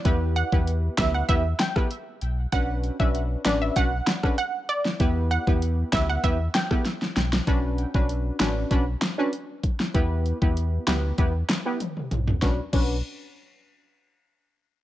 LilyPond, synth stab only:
\new Staff \with { instrumentName = "Synth stab" } { \time 4/4 \key b \minor \tempo 4 = 97 <b e' g' b'>8. <b e' g' b'>8. <b e' g' b'>8 <b e' g' b'>16 r8 <b e' g' b'>16 r4 | <cis' d' fis' b'>8. <cis' d' fis' b'>8. <cis' d' fis' b'>8 <cis' d' fis' b'>16 r8 <cis' d' fis' b'>16 r4 | <b e' g' b'>8. <b e' g' b'>8. <b e' g' b'>8 <b e' g' b'>16 r8 <b e' g' b'>16 r4 | <cis' d' fis' b'>8. <cis' d' fis' b'>8. <cis' d' fis' b'>8 <cis' d' fis' b'>16 r8 <cis' d' fis' b'>16 r4 |
<b e' g' b'>8. <b e' g' b'>8. <b e' g' b'>8 <b e' g' b'>16 r8 <b e' g' b'>16 r4 | <cis' d' fis' b'>16 r16 <cis' d' fis' b'>8 r2. | }